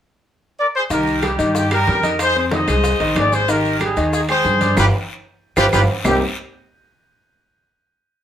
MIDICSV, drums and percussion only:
0, 0, Header, 1, 2, 480
1, 0, Start_track
1, 0, Key_signature, -3, "minor"
1, 0, Tempo, 321371
1, 1353, Time_signature, 4, 2, 24, 8
1, 12300, End_track
2, 0, Start_track
2, 0, Title_t, "Drums"
2, 1349, Note_on_c, 9, 63, 37
2, 1350, Note_on_c, 9, 60, 65
2, 1350, Note_on_c, 9, 70, 79
2, 1350, Note_on_c, 9, 74, 67
2, 1351, Note_on_c, 9, 65, 60
2, 1499, Note_off_c, 9, 63, 0
2, 1499, Note_off_c, 9, 70, 0
2, 1500, Note_off_c, 9, 60, 0
2, 1500, Note_off_c, 9, 65, 0
2, 1500, Note_off_c, 9, 74, 0
2, 1590, Note_on_c, 9, 63, 33
2, 1597, Note_on_c, 9, 70, 26
2, 1739, Note_off_c, 9, 63, 0
2, 1747, Note_off_c, 9, 70, 0
2, 1831, Note_on_c, 9, 63, 57
2, 1831, Note_on_c, 9, 65, 87
2, 1835, Note_on_c, 9, 60, 64
2, 1836, Note_on_c, 9, 75, 66
2, 1839, Note_on_c, 9, 70, 29
2, 1839, Note_on_c, 9, 73, 69
2, 1980, Note_off_c, 9, 63, 0
2, 1980, Note_off_c, 9, 65, 0
2, 1984, Note_off_c, 9, 60, 0
2, 1985, Note_off_c, 9, 75, 0
2, 1988, Note_off_c, 9, 70, 0
2, 1988, Note_off_c, 9, 73, 0
2, 2073, Note_on_c, 9, 65, 65
2, 2078, Note_on_c, 9, 60, 36
2, 2078, Note_on_c, 9, 63, 35
2, 2079, Note_on_c, 9, 73, 61
2, 2082, Note_on_c, 9, 70, 63
2, 2222, Note_off_c, 9, 65, 0
2, 2227, Note_off_c, 9, 60, 0
2, 2228, Note_off_c, 9, 63, 0
2, 2229, Note_off_c, 9, 73, 0
2, 2232, Note_off_c, 9, 70, 0
2, 2313, Note_on_c, 9, 60, 73
2, 2313, Note_on_c, 9, 63, 34
2, 2323, Note_on_c, 9, 70, 90
2, 2324, Note_on_c, 9, 74, 70
2, 2462, Note_off_c, 9, 63, 0
2, 2463, Note_off_c, 9, 60, 0
2, 2472, Note_off_c, 9, 70, 0
2, 2473, Note_off_c, 9, 74, 0
2, 2556, Note_on_c, 9, 65, 97
2, 2558, Note_on_c, 9, 60, 33
2, 2560, Note_on_c, 9, 63, 33
2, 2563, Note_on_c, 9, 75, 68
2, 2570, Note_on_c, 9, 70, 32
2, 2705, Note_off_c, 9, 65, 0
2, 2708, Note_off_c, 9, 60, 0
2, 2709, Note_off_c, 9, 63, 0
2, 2712, Note_off_c, 9, 75, 0
2, 2719, Note_off_c, 9, 70, 0
2, 2793, Note_on_c, 9, 60, 35
2, 2793, Note_on_c, 9, 61, 76
2, 2800, Note_on_c, 9, 63, 81
2, 2802, Note_on_c, 9, 73, 62
2, 2810, Note_on_c, 9, 70, 29
2, 2943, Note_off_c, 9, 60, 0
2, 2943, Note_off_c, 9, 61, 0
2, 2950, Note_off_c, 9, 63, 0
2, 2951, Note_off_c, 9, 73, 0
2, 2960, Note_off_c, 9, 70, 0
2, 3033, Note_on_c, 9, 63, 71
2, 3037, Note_on_c, 9, 60, 32
2, 3038, Note_on_c, 9, 65, 70
2, 3046, Note_on_c, 9, 73, 70
2, 3048, Note_on_c, 9, 70, 64
2, 3182, Note_off_c, 9, 63, 0
2, 3187, Note_off_c, 9, 60, 0
2, 3188, Note_off_c, 9, 65, 0
2, 3195, Note_off_c, 9, 73, 0
2, 3197, Note_off_c, 9, 70, 0
2, 3273, Note_on_c, 9, 60, 62
2, 3275, Note_on_c, 9, 65, 89
2, 3278, Note_on_c, 9, 63, 34
2, 3284, Note_on_c, 9, 70, 81
2, 3285, Note_on_c, 9, 74, 59
2, 3287, Note_on_c, 9, 75, 61
2, 3422, Note_off_c, 9, 60, 0
2, 3425, Note_off_c, 9, 65, 0
2, 3427, Note_off_c, 9, 63, 0
2, 3433, Note_off_c, 9, 70, 0
2, 3434, Note_off_c, 9, 74, 0
2, 3436, Note_off_c, 9, 75, 0
2, 3519, Note_on_c, 9, 63, 34
2, 3530, Note_on_c, 9, 70, 27
2, 3669, Note_off_c, 9, 63, 0
2, 3680, Note_off_c, 9, 70, 0
2, 3755, Note_on_c, 9, 65, 70
2, 3756, Note_on_c, 9, 60, 66
2, 3756, Note_on_c, 9, 63, 99
2, 3765, Note_on_c, 9, 73, 66
2, 3771, Note_on_c, 9, 70, 27
2, 3905, Note_off_c, 9, 60, 0
2, 3905, Note_off_c, 9, 65, 0
2, 3906, Note_off_c, 9, 63, 0
2, 3914, Note_off_c, 9, 73, 0
2, 3920, Note_off_c, 9, 70, 0
2, 3997, Note_on_c, 9, 65, 81
2, 3998, Note_on_c, 9, 60, 33
2, 4000, Note_on_c, 9, 63, 34
2, 4000, Note_on_c, 9, 64, 83
2, 4004, Note_on_c, 9, 70, 67
2, 4006, Note_on_c, 9, 75, 61
2, 4008, Note_on_c, 9, 73, 69
2, 4147, Note_off_c, 9, 60, 0
2, 4147, Note_off_c, 9, 65, 0
2, 4149, Note_off_c, 9, 63, 0
2, 4149, Note_off_c, 9, 64, 0
2, 4153, Note_off_c, 9, 70, 0
2, 4156, Note_off_c, 9, 75, 0
2, 4157, Note_off_c, 9, 73, 0
2, 4236, Note_on_c, 9, 60, 66
2, 4240, Note_on_c, 9, 63, 35
2, 4240, Note_on_c, 9, 64, 67
2, 4245, Note_on_c, 9, 74, 83
2, 4246, Note_on_c, 9, 65, 68
2, 4246, Note_on_c, 9, 70, 85
2, 4386, Note_off_c, 9, 60, 0
2, 4389, Note_off_c, 9, 63, 0
2, 4389, Note_off_c, 9, 64, 0
2, 4394, Note_off_c, 9, 74, 0
2, 4395, Note_off_c, 9, 65, 0
2, 4395, Note_off_c, 9, 70, 0
2, 4483, Note_on_c, 9, 63, 33
2, 4483, Note_on_c, 9, 65, 70
2, 4485, Note_on_c, 9, 60, 33
2, 4492, Note_on_c, 9, 70, 31
2, 4633, Note_off_c, 9, 63, 0
2, 4633, Note_off_c, 9, 65, 0
2, 4634, Note_off_c, 9, 60, 0
2, 4641, Note_off_c, 9, 70, 0
2, 4721, Note_on_c, 9, 63, 95
2, 4722, Note_on_c, 9, 65, 96
2, 4722, Note_on_c, 9, 66, 72
2, 4724, Note_on_c, 9, 73, 70
2, 4725, Note_on_c, 9, 60, 32
2, 4725, Note_on_c, 9, 61, 78
2, 4727, Note_on_c, 9, 75, 55
2, 4728, Note_on_c, 9, 70, 27
2, 4870, Note_off_c, 9, 63, 0
2, 4872, Note_off_c, 9, 65, 0
2, 4872, Note_off_c, 9, 66, 0
2, 4873, Note_off_c, 9, 73, 0
2, 4874, Note_off_c, 9, 60, 0
2, 4874, Note_off_c, 9, 61, 0
2, 4876, Note_off_c, 9, 75, 0
2, 4877, Note_off_c, 9, 70, 0
2, 4963, Note_on_c, 9, 73, 72
2, 4964, Note_on_c, 9, 63, 29
2, 4967, Note_on_c, 9, 70, 66
2, 4970, Note_on_c, 9, 60, 35
2, 5112, Note_off_c, 9, 73, 0
2, 5114, Note_off_c, 9, 63, 0
2, 5116, Note_off_c, 9, 70, 0
2, 5119, Note_off_c, 9, 60, 0
2, 5199, Note_on_c, 9, 74, 70
2, 5204, Note_on_c, 9, 63, 36
2, 5204, Note_on_c, 9, 65, 69
2, 5206, Note_on_c, 9, 70, 84
2, 5208, Note_on_c, 9, 60, 62
2, 5349, Note_off_c, 9, 74, 0
2, 5353, Note_off_c, 9, 65, 0
2, 5354, Note_off_c, 9, 63, 0
2, 5355, Note_off_c, 9, 70, 0
2, 5357, Note_off_c, 9, 60, 0
2, 5440, Note_on_c, 9, 63, 35
2, 5450, Note_on_c, 9, 70, 28
2, 5590, Note_off_c, 9, 63, 0
2, 5599, Note_off_c, 9, 70, 0
2, 5676, Note_on_c, 9, 63, 54
2, 5683, Note_on_c, 9, 73, 68
2, 5687, Note_on_c, 9, 65, 84
2, 5688, Note_on_c, 9, 75, 70
2, 5689, Note_on_c, 9, 60, 59
2, 5689, Note_on_c, 9, 70, 25
2, 5825, Note_off_c, 9, 63, 0
2, 5833, Note_off_c, 9, 73, 0
2, 5836, Note_off_c, 9, 65, 0
2, 5837, Note_off_c, 9, 75, 0
2, 5838, Note_off_c, 9, 60, 0
2, 5838, Note_off_c, 9, 70, 0
2, 5915, Note_on_c, 9, 63, 33
2, 5923, Note_on_c, 9, 70, 72
2, 5925, Note_on_c, 9, 73, 58
2, 5928, Note_on_c, 9, 65, 66
2, 5933, Note_on_c, 9, 60, 36
2, 6064, Note_off_c, 9, 63, 0
2, 6073, Note_off_c, 9, 70, 0
2, 6074, Note_off_c, 9, 73, 0
2, 6077, Note_off_c, 9, 65, 0
2, 6082, Note_off_c, 9, 60, 0
2, 6152, Note_on_c, 9, 63, 36
2, 6163, Note_on_c, 9, 74, 75
2, 6170, Note_on_c, 9, 70, 84
2, 6172, Note_on_c, 9, 60, 60
2, 6302, Note_off_c, 9, 63, 0
2, 6313, Note_off_c, 9, 74, 0
2, 6319, Note_off_c, 9, 70, 0
2, 6321, Note_off_c, 9, 60, 0
2, 6399, Note_on_c, 9, 63, 35
2, 6402, Note_on_c, 9, 65, 94
2, 6407, Note_on_c, 9, 60, 30
2, 6409, Note_on_c, 9, 75, 70
2, 6414, Note_on_c, 9, 70, 28
2, 6548, Note_off_c, 9, 63, 0
2, 6552, Note_off_c, 9, 65, 0
2, 6557, Note_off_c, 9, 60, 0
2, 6559, Note_off_c, 9, 75, 0
2, 6564, Note_off_c, 9, 70, 0
2, 6641, Note_on_c, 9, 73, 69
2, 6642, Note_on_c, 9, 63, 85
2, 6651, Note_on_c, 9, 60, 33
2, 6651, Note_on_c, 9, 61, 79
2, 6653, Note_on_c, 9, 70, 29
2, 6790, Note_off_c, 9, 73, 0
2, 6792, Note_off_c, 9, 63, 0
2, 6801, Note_off_c, 9, 60, 0
2, 6801, Note_off_c, 9, 61, 0
2, 6802, Note_off_c, 9, 70, 0
2, 6883, Note_on_c, 9, 65, 67
2, 6884, Note_on_c, 9, 60, 35
2, 6886, Note_on_c, 9, 73, 70
2, 6888, Note_on_c, 9, 63, 83
2, 6888, Note_on_c, 9, 70, 69
2, 7032, Note_off_c, 9, 65, 0
2, 7033, Note_off_c, 9, 60, 0
2, 7035, Note_off_c, 9, 73, 0
2, 7037, Note_off_c, 9, 70, 0
2, 7038, Note_off_c, 9, 63, 0
2, 7119, Note_on_c, 9, 65, 108
2, 7119, Note_on_c, 9, 74, 83
2, 7123, Note_on_c, 9, 63, 102
2, 7125, Note_on_c, 9, 61, 87
2, 7126, Note_on_c, 9, 70, 92
2, 7128, Note_on_c, 9, 75, 88
2, 7268, Note_off_c, 9, 65, 0
2, 7268, Note_off_c, 9, 74, 0
2, 7272, Note_off_c, 9, 63, 0
2, 7275, Note_off_c, 9, 61, 0
2, 7276, Note_off_c, 9, 70, 0
2, 7278, Note_off_c, 9, 75, 0
2, 8308, Note_on_c, 9, 74, 97
2, 8315, Note_on_c, 9, 70, 100
2, 8317, Note_on_c, 9, 65, 98
2, 8318, Note_on_c, 9, 61, 92
2, 8318, Note_on_c, 9, 63, 95
2, 8318, Note_on_c, 9, 75, 96
2, 8458, Note_off_c, 9, 74, 0
2, 8465, Note_off_c, 9, 70, 0
2, 8466, Note_off_c, 9, 65, 0
2, 8467, Note_off_c, 9, 61, 0
2, 8467, Note_off_c, 9, 63, 0
2, 8468, Note_off_c, 9, 75, 0
2, 8553, Note_on_c, 9, 61, 88
2, 8554, Note_on_c, 9, 75, 92
2, 8556, Note_on_c, 9, 65, 103
2, 8557, Note_on_c, 9, 74, 99
2, 8558, Note_on_c, 9, 63, 106
2, 8559, Note_on_c, 9, 70, 100
2, 8702, Note_off_c, 9, 61, 0
2, 8704, Note_off_c, 9, 75, 0
2, 8706, Note_off_c, 9, 65, 0
2, 8706, Note_off_c, 9, 74, 0
2, 8707, Note_off_c, 9, 63, 0
2, 8708, Note_off_c, 9, 70, 0
2, 9030, Note_on_c, 9, 61, 91
2, 9033, Note_on_c, 9, 75, 83
2, 9034, Note_on_c, 9, 66, 97
2, 9035, Note_on_c, 9, 70, 92
2, 9035, Note_on_c, 9, 74, 94
2, 9036, Note_on_c, 9, 64, 100
2, 9180, Note_off_c, 9, 61, 0
2, 9183, Note_off_c, 9, 75, 0
2, 9184, Note_off_c, 9, 66, 0
2, 9184, Note_off_c, 9, 74, 0
2, 9185, Note_off_c, 9, 64, 0
2, 9185, Note_off_c, 9, 70, 0
2, 12300, End_track
0, 0, End_of_file